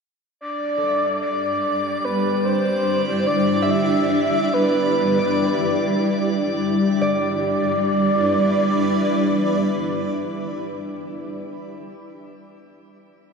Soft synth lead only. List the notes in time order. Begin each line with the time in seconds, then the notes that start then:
0.41 D5
1.22 D5
2.04 B4
2.45 C5
3.27 D5
3.70 E5
4.53 B4
6.98 D5